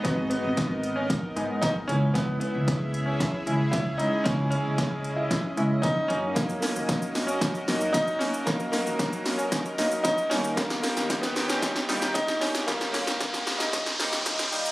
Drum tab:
HH |x-x-x-x-x-x-x-x-|x-x-x-x-x-x-x-x-|x-x-x-x-x-x-x-x-|x-o-x-o-x-o-x-o-|
SH |----------------|----------------|----------------|xxxxxxxxxxxxxxxx|
SD |o---o---o---o---|o---o---o---o---|o---o---o---o---|o-o-o-o-o-o-o-o-|
BD |o---o---o---o---|o---o---o---o---|o---o---o---o---|o---o---o---o---|

HH |x-o-x-o-x-o-x-o-|x-o-x-o-x-o-x-o-|x-o-x-o-x-o-x-o-|
SH |xxxxxxxxxxxxxxxx|xxxxxxxxxxxxxxxx|xxxxxxxxxxxxxxxx|
SD |o-o-o-o-o-o-o-o-|oooooooooooooooo|oooooooooooooo--|
BD |o---o---o---o---|o---o---o---o---|o---o---o-------|